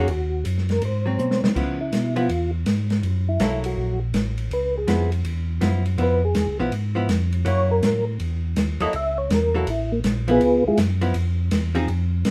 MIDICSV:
0, 0, Header, 1, 5, 480
1, 0, Start_track
1, 0, Tempo, 368777
1, 112, Time_signature, 4, 2, 24, 8
1, 16019, End_track
2, 0, Start_track
2, 0, Title_t, "Tonewheel organ"
2, 0, Program_c, 0, 16
2, 144, Note_on_c, 0, 66, 84
2, 575, Note_off_c, 0, 66, 0
2, 938, Note_on_c, 0, 70, 81
2, 1079, Note_off_c, 0, 70, 0
2, 1109, Note_on_c, 0, 72, 79
2, 1829, Note_off_c, 0, 72, 0
2, 2354, Note_on_c, 0, 64, 68
2, 2795, Note_off_c, 0, 64, 0
2, 2818, Note_on_c, 0, 65, 96
2, 3266, Note_off_c, 0, 65, 0
2, 4279, Note_on_c, 0, 64, 73
2, 4718, Note_off_c, 0, 64, 0
2, 4761, Note_on_c, 0, 66, 80
2, 5199, Note_off_c, 0, 66, 0
2, 5900, Note_on_c, 0, 71, 74
2, 6188, Note_off_c, 0, 71, 0
2, 6216, Note_on_c, 0, 68, 60
2, 6647, Note_off_c, 0, 68, 0
2, 7840, Note_on_c, 0, 71, 95
2, 8118, Note_off_c, 0, 71, 0
2, 8131, Note_on_c, 0, 68, 59
2, 8565, Note_off_c, 0, 68, 0
2, 9736, Note_on_c, 0, 73, 91
2, 10026, Note_off_c, 0, 73, 0
2, 10039, Note_on_c, 0, 70, 78
2, 10478, Note_off_c, 0, 70, 0
2, 11475, Note_on_c, 0, 75, 93
2, 11633, Note_off_c, 0, 75, 0
2, 11659, Note_on_c, 0, 76, 101
2, 11948, Note_off_c, 0, 76, 0
2, 11950, Note_on_c, 0, 73, 75
2, 12110, Note_off_c, 0, 73, 0
2, 12161, Note_on_c, 0, 70, 73
2, 12438, Note_on_c, 0, 66, 96
2, 12439, Note_off_c, 0, 70, 0
2, 12594, Note_off_c, 0, 66, 0
2, 12626, Note_on_c, 0, 64, 82
2, 12911, Note_off_c, 0, 64, 0
2, 12915, Note_on_c, 0, 58, 87
2, 13012, Note_off_c, 0, 58, 0
2, 13417, Note_on_c, 0, 59, 73
2, 13417, Note_on_c, 0, 65, 69
2, 13419, Note_on_c, 0, 68, 74
2, 13420, Note_on_c, 0, 71, 84
2, 13847, Note_off_c, 0, 59, 0
2, 13847, Note_off_c, 0, 65, 0
2, 13848, Note_off_c, 0, 68, 0
2, 13849, Note_off_c, 0, 71, 0
2, 13896, Note_on_c, 0, 65, 56
2, 13897, Note_on_c, 0, 64, 52
2, 13898, Note_on_c, 0, 68, 72
2, 13900, Note_on_c, 0, 56, 52
2, 14043, Note_off_c, 0, 65, 0
2, 14044, Note_off_c, 0, 64, 0
2, 14045, Note_off_c, 0, 68, 0
2, 14046, Note_off_c, 0, 56, 0
2, 16019, End_track
3, 0, Start_track
3, 0, Title_t, "Hollow-body jazz guitar"
3, 0, Program_c, 1, 26
3, 1375, Note_on_c, 1, 54, 53
3, 1390, Note_on_c, 1, 60, 61
3, 1994, Note_off_c, 1, 54, 0
3, 2001, Note_off_c, 1, 60, 0
3, 2022, Note_on_c, 1, 53, 53
3, 2031, Note_on_c, 1, 59, 55
3, 2041, Note_on_c, 1, 64, 57
3, 2307, Note_off_c, 1, 53, 0
3, 2311, Note_off_c, 1, 59, 0
3, 2316, Note_off_c, 1, 64, 0
3, 2811, Note_on_c, 1, 53, 61
3, 2817, Note_on_c, 1, 59, 66
3, 2821, Note_on_c, 1, 64, 68
3, 2969, Note_off_c, 1, 53, 0
3, 2971, Note_off_c, 1, 59, 0
3, 2974, Note_off_c, 1, 64, 0
3, 4431, Note_on_c, 1, 54, 53
3, 4436, Note_on_c, 1, 58, 51
3, 4442, Note_on_c, 1, 64, 57
3, 4449, Note_on_c, 1, 69, 61
3, 5160, Note_off_c, 1, 54, 0
3, 5163, Note_off_c, 1, 58, 0
3, 5165, Note_off_c, 1, 64, 0
3, 5169, Note_off_c, 1, 69, 0
3, 6346, Note_on_c, 1, 53, 52
3, 6356, Note_on_c, 1, 59, 58
3, 6364, Note_on_c, 1, 64, 59
3, 6629, Note_off_c, 1, 53, 0
3, 6634, Note_off_c, 1, 59, 0
3, 6638, Note_off_c, 1, 64, 0
3, 7302, Note_on_c, 1, 53, 46
3, 7305, Note_on_c, 1, 59, 50
3, 7316, Note_on_c, 1, 64, 58
3, 7587, Note_off_c, 1, 53, 0
3, 7589, Note_off_c, 1, 59, 0
3, 7594, Note_off_c, 1, 64, 0
3, 7783, Note_on_c, 1, 53, 55
3, 7792, Note_on_c, 1, 59, 62
3, 7802, Note_on_c, 1, 64, 59
3, 8067, Note_off_c, 1, 53, 0
3, 8072, Note_off_c, 1, 59, 0
3, 8077, Note_off_c, 1, 64, 0
3, 8584, Note_on_c, 1, 53, 60
3, 8591, Note_on_c, 1, 59, 70
3, 8597, Note_on_c, 1, 64, 69
3, 8736, Note_off_c, 1, 53, 0
3, 8739, Note_off_c, 1, 59, 0
3, 8742, Note_off_c, 1, 64, 0
3, 9048, Note_on_c, 1, 53, 61
3, 9061, Note_on_c, 1, 59, 68
3, 9067, Note_on_c, 1, 64, 70
3, 9208, Note_off_c, 1, 53, 0
3, 9214, Note_off_c, 1, 59, 0
3, 9217, Note_off_c, 1, 64, 0
3, 9696, Note_on_c, 1, 54, 62
3, 9703, Note_on_c, 1, 58, 56
3, 9707, Note_on_c, 1, 64, 55
3, 10433, Note_off_c, 1, 54, 0
3, 10436, Note_off_c, 1, 58, 0
3, 10438, Note_off_c, 1, 64, 0
3, 11461, Note_on_c, 1, 54, 69
3, 11473, Note_on_c, 1, 58, 65
3, 11477, Note_on_c, 1, 64, 78
3, 11479, Note_on_c, 1, 69, 66
3, 11614, Note_off_c, 1, 54, 0
3, 11620, Note_off_c, 1, 58, 0
3, 11622, Note_off_c, 1, 64, 0
3, 11623, Note_off_c, 1, 69, 0
3, 12424, Note_on_c, 1, 54, 62
3, 12432, Note_on_c, 1, 58, 57
3, 12433, Note_on_c, 1, 64, 68
3, 12442, Note_on_c, 1, 69, 65
3, 12575, Note_off_c, 1, 54, 0
3, 12579, Note_off_c, 1, 58, 0
3, 12580, Note_off_c, 1, 64, 0
3, 12585, Note_off_c, 1, 69, 0
3, 13377, Note_on_c, 1, 53, 64
3, 13387, Note_on_c, 1, 59, 68
3, 13395, Note_on_c, 1, 64, 76
3, 13532, Note_off_c, 1, 53, 0
3, 13537, Note_off_c, 1, 59, 0
3, 13541, Note_off_c, 1, 64, 0
3, 14336, Note_on_c, 1, 53, 61
3, 14343, Note_on_c, 1, 59, 61
3, 14351, Note_on_c, 1, 64, 63
3, 14491, Note_off_c, 1, 53, 0
3, 14495, Note_off_c, 1, 59, 0
3, 14499, Note_off_c, 1, 64, 0
3, 15290, Note_on_c, 1, 53, 69
3, 15296, Note_on_c, 1, 60, 72
3, 15304, Note_on_c, 1, 63, 73
3, 15307, Note_on_c, 1, 68, 79
3, 15448, Note_off_c, 1, 53, 0
3, 15451, Note_off_c, 1, 60, 0
3, 15455, Note_off_c, 1, 63, 0
3, 15456, Note_off_c, 1, 68, 0
3, 16019, End_track
4, 0, Start_track
4, 0, Title_t, "Tonewheel organ"
4, 0, Program_c, 2, 16
4, 105, Note_on_c, 2, 39, 76
4, 574, Note_off_c, 2, 39, 0
4, 592, Note_on_c, 2, 42, 80
4, 1057, Note_off_c, 2, 42, 0
4, 1066, Note_on_c, 2, 44, 78
4, 1534, Note_off_c, 2, 44, 0
4, 1553, Note_on_c, 2, 47, 76
4, 1841, Note_off_c, 2, 47, 0
4, 1858, Note_on_c, 2, 47, 36
4, 1944, Note_off_c, 2, 47, 0
4, 2024, Note_on_c, 2, 49, 78
4, 2493, Note_off_c, 2, 49, 0
4, 2507, Note_on_c, 2, 47, 81
4, 2974, Note_off_c, 2, 47, 0
4, 2989, Note_on_c, 2, 40, 77
4, 3455, Note_off_c, 2, 40, 0
4, 3467, Note_on_c, 2, 44, 79
4, 3934, Note_off_c, 2, 44, 0
4, 3939, Note_on_c, 2, 42, 83
4, 4410, Note_off_c, 2, 42, 0
4, 4426, Note_on_c, 2, 35, 82
4, 4894, Note_off_c, 2, 35, 0
4, 4902, Note_on_c, 2, 34, 79
4, 5372, Note_off_c, 2, 34, 0
4, 5379, Note_on_c, 2, 33, 87
4, 5851, Note_off_c, 2, 33, 0
4, 5868, Note_on_c, 2, 37, 80
4, 6335, Note_off_c, 2, 37, 0
4, 6348, Note_on_c, 2, 41, 77
4, 6816, Note_off_c, 2, 41, 0
4, 6825, Note_on_c, 2, 40, 72
4, 7294, Note_off_c, 2, 40, 0
4, 7304, Note_on_c, 2, 42, 87
4, 7773, Note_off_c, 2, 42, 0
4, 7786, Note_on_c, 2, 41, 82
4, 8254, Note_off_c, 2, 41, 0
4, 8263, Note_on_c, 2, 40, 78
4, 8423, Note_off_c, 2, 40, 0
4, 8424, Note_on_c, 2, 37, 54
4, 8588, Note_off_c, 2, 37, 0
4, 8588, Note_on_c, 2, 35, 62
4, 8739, Note_off_c, 2, 35, 0
4, 8741, Note_on_c, 2, 44, 74
4, 9212, Note_off_c, 2, 44, 0
4, 9215, Note_on_c, 2, 41, 81
4, 9689, Note_off_c, 2, 41, 0
4, 9703, Note_on_c, 2, 42, 82
4, 10173, Note_off_c, 2, 42, 0
4, 10184, Note_on_c, 2, 45, 86
4, 10654, Note_off_c, 2, 45, 0
4, 10669, Note_on_c, 2, 40, 77
4, 11136, Note_off_c, 2, 40, 0
4, 11145, Note_on_c, 2, 39, 80
4, 11438, Note_off_c, 2, 39, 0
4, 11462, Note_on_c, 2, 39, 35
4, 11547, Note_off_c, 2, 39, 0
4, 11630, Note_on_c, 2, 37, 84
4, 12096, Note_off_c, 2, 37, 0
4, 12105, Note_on_c, 2, 40, 90
4, 12574, Note_off_c, 2, 40, 0
4, 12582, Note_on_c, 2, 33, 78
4, 13052, Note_off_c, 2, 33, 0
4, 13060, Note_on_c, 2, 34, 82
4, 13531, Note_off_c, 2, 34, 0
4, 13540, Note_on_c, 2, 37, 86
4, 13835, Note_off_c, 2, 37, 0
4, 13856, Note_on_c, 2, 37, 34
4, 13942, Note_off_c, 2, 37, 0
4, 14027, Note_on_c, 2, 42, 84
4, 14495, Note_off_c, 2, 42, 0
4, 14509, Note_on_c, 2, 41, 81
4, 14976, Note_off_c, 2, 41, 0
4, 14990, Note_on_c, 2, 40, 84
4, 15456, Note_off_c, 2, 40, 0
4, 15464, Note_on_c, 2, 41, 81
4, 15932, Note_off_c, 2, 41, 0
4, 15948, Note_on_c, 2, 48, 79
4, 16019, Note_off_c, 2, 48, 0
4, 16019, End_track
5, 0, Start_track
5, 0, Title_t, "Drums"
5, 99, Note_on_c, 9, 51, 51
5, 229, Note_off_c, 9, 51, 0
5, 584, Note_on_c, 9, 44, 47
5, 584, Note_on_c, 9, 51, 61
5, 714, Note_off_c, 9, 44, 0
5, 714, Note_off_c, 9, 51, 0
5, 753, Note_on_c, 9, 38, 27
5, 883, Note_off_c, 9, 38, 0
5, 895, Note_on_c, 9, 51, 40
5, 908, Note_on_c, 9, 38, 44
5, 1025, Note_off_c, 9, 51, 0
5, 1038, Note_off_c, 9, 38, 0
5, 1061, Note_on_c, 9, 51, 58
5, 1191, Note_off_c, 9, 51, 0
5, 1543, Note_on_c, 9, 44, 55
5, 1549, Note_on_c, 9, 48, 40
5, 1673, Note_off_c, 9, 44, 0
5, 1679, Note_off_c, 9, 48, 0
5, 1707, Note_on_c, 9, 38, 51
5, 1837, Note_off_c, 9, 38, 0
5, 1873, Note_on_c, 9, 38, 79
5, 2003, Note_off_c, 9, 38, 0
5, 2031, Note_on_c, 9, 36, 58
5, 2033, Note_on_c, 9, 49, 62
5, 2161, Note_off_c, 9, 36, 0
5, 2163, Note_off_c, 9, 49, 0
5, 2505, Note_on_c, 9, 44, 56
5, 2505, Note_on_c, 9, 51, 60
5, 2511, Note_on_c, 9, 38, 60
5, 2635, Note_off_c, 9, 44, 0
5, 2635, Note_off_c, 9, 51, 0
5, 2641, Note_off_c, 9, 38, 0
5, 2814, Note_on_c, 9, 51, 42
5, 2944, Note_off_c, 9, 51, 0
5, 2985, Note_on_c, 9, 51, 56
5, 3115, Note_off_c, 9, 51, 0
5, 3461, Note_on_c, 9, 44, 43
5, 3461, Note_on_c, 9, 51, 65
5, 3468, Note_on_c, 9, 38, 61
5, 3592, Note_off_c, 9, 44, 0
5, 3592, Note_off_c, 9, 51, 0
5, 3598, Note_off_c, 9, 38, 0
5, 3776, Note_on_c, 9, 51, 41
5, 3782, Note_on_c, 9, 38, 51
5, 3906, Note_off_c, 9, 51, 0
5, 3912, Note_off_c, 9, 38, 0
5, 3946, Note_on_c, 9, 51, 47
5, 4076, Note_off_c, 9, 51, 0
5, 4420, Note_on_c, 9, 44, 52
5, 4420, Note_on_c, 9, 51, 62
5, 4426, Note_on_c, 9, 38, 64
5, 4550, Note_off_c, 9, 44, 0
5, 4550, Note_off_c, 9, 51, 0
5, 4557, Note_off_c, 9, 38, 0
5, 4734, Note_on_c, 9, 51, 63
5, 4864, Note_off_c, 9, 51, 0
5, 5385, Note_on_c, 9, 44, 56
5, 5385, Note_on_c, 9, 51, 65
5, 5392, Note_on_c, 9, 38, 63
5, 5516, Note_off_c, 9, 44, 0
5, 5516, Note_off_c, 9, 51, 0
5, 5522, Note_off_c, 9, 38, 0
5, 5695, Note_on_c, 9, 51, 45
5, 5826, Note_off_c, 9, 51, 0
5, 5871, Note_on_c, 9, 51, 52
5, 6001, Note_off_c, 9, 51, 0
5, 6347, Note_on_c, 9, 44, 54
5, 6347, Note_on_c, 9, 51, 65
5, 6353, Note_on_c, 9, 38, 61
5, 6477, Note_off_c, 9, 44, 0
5, 6477, Note_off_c, 9, 51, 0
5, 6484, Note_off_c, 9, 38, 0
5, 6662, Note_on_c, 9, 51, 46
5, 6792, Note_off_c, 9, 51, 0
5, 6828, Note_on_c, 9, 51, 56
5, 6958, Note_off_c, 9, 51, 0
5, 7306, Note_on_c, 9, 44, 49
5, 7306, Note_on_c, 9, 51, 65
5, 7313, Note_on_c, 9, 38, 60
5, 7436, Note_off_c, 9, 44, 0
5, 7436, Note_off_c, 9, 51, 0
5, 7443, Note_off_c, 9, 38, 0
5, 7621, Note_on_c, 9, 51, 44
5, 7751, Note_off_c, 9, 51, 0
5, 7785, Note_on_c, 9, 51, 48
5, 7915, Note_off_c, 9, 51, 0
5, 8259, Note_on_c, 9, 44, 62
5, 8259, Note_on_c, 9, 51, 62
5, 8266, Note_on_c, 9, 38, 60
5, 8389, Note_off_c, 9, 44, 0
5, 8389, Note_off_c, 9, 51, 0
5, 8396, Note_off_c, 9, 38, 0
5, 8745, Note_on_c, 9, 51, 56
5, 8875, Note_off_c, 9, 51, 0
5, 9226, Note_on_c, 9, 44, 50
5, 9226, Note_on_c, 9, 51, 64
5, 9232, Note_on_c, 9, 38, 64
5, 9356, Note_off_c, 9, 44, 0
5, 9356, Note_off_c, 9, 51, 0
5, 9362, Note_off_c, 9, 38, 0
5, 9533, Note_on_c, 9, 51, 45
5, 9663, Note_off_c, 9, 51, 0
5, 9705, Note_on_c, 9, 51, 57
5, 9835, Note_off_c, 9, 51, 0
5, 10186, Note_on_c, 9, 44, 61
5, 10186, Note_on_c, 9, 51, 65
5, 10192, Note_on_c, 9, 38, 66
5, 10316, Note_off_c, 9, 44, 0
5, 10316, Note_off_c, 9, 51, 0
5, 10322, Note_off_c, 9, 38, 0
5, 10668, Note_on_c, 9, 51, 55
5, 10798, Note_off_c, 9, 51, 0
5, 11145, Note_on_c, 9, 44, 58
5, 11145, Note_on_c, 9, 51, 66
5, 11151, Note_on_c, 9, 38, 67
5, 11275, Note_off_c, 9, 44, 0
5, 11275, Note_off_c, 9, 51, 0
5, 11281, Note_off_c, 9, 38, 0
5, 11457, Note_on_c, 9, 51, 49
5, 11587, Note_off_c, 9, 51, 0
5, 11622, Note_on_c, 9, 51, 54
5, 11752, Note_off_c, 9, 51, 0
5, 12109, Note_on_c, 9, 44, 55
5, 12109, Note_on_c, 9, 51, 66
5, 12116, Note_on_c, 9, 38, 70
5, 12240, Note_off_c, 9, 44, 0
5, 12240, Note_off_c, 9, 51, 0
5, 12246, Note_off_c, 9, 38, 0
5, 12585, Note_on_c, 9, 51, 63
5, 12715, Note_off_c, 9, 51, 0
5, 13066, Note_on_c, 9, 44, 60
5, 13066, Note_on_c, 9, 51, 64
5, 13073, Note_on_c, 9, 38, 65
5, 13196, Note_off_c, 9, 44, 0
5, 13196, Note_off_c, 9, 51, 0
5, 13203, Note_off_c, 9, 38, 0
5, 13378, Note_on_c, 9, 51, 48
5, 13508, Note_off_c, 9, 51, 0
5, 13545, Note_on_c, 9, 51, 52
5, 13676, Note_off_c, 9, 51, 0
5, 14024, Note_on_c, 9, 44, 56
5, 14024, Note_on_c, 9, 51, 64
5, 14030, Note_on_c, 9, 38, 71
5, 14154, Note_off_c, 9, 44, 0
5, 14154, Note_off_c, 9, 51, 0
5, 14160, Note_off_c, 9, 38, 0
5, 14335, Note_on_c, 9, 51, 48
5, 14465, Note_off_c, 9, 51, 0
5, 14500, Note_on_c, 9, 51, 62
5, 14630, Note_off_c, 9, 51, 0
5, 14983, Note_on_c, 9, 44, 55
5, 14983, Note_on_c, 9, 51, 67
5, 14989, Note_on_c, 9, 38, 64
5, 15113, Note_off_c, 9, 44, 0
5, 15113, Note_off_c, 9, 51, 0
5, 15119, Note_off_c, 9, 38, 0
5, 15294, Note_on_c, 9, 51, 44
5, 15424, Note_off_c, 9, 51, 0
5, 15465, Note_on_c, 9, 51, 51
5, 15595, Note_off_c, 9, 51, 0
5, 15940, Note_on_c, 9, 44, 57
5, 15940, Note_on_c, 9, 51, 69
5, 15946, Note_on_c, 9, 38, 68
5, 16019, Note_off_c, 9, 38, 0
5, 16019, Note_off_c, 9, 44, 0
5, 16019, Note_off_c, 9, 51, 0
5, 16019, End_track
0, 0, End_of_file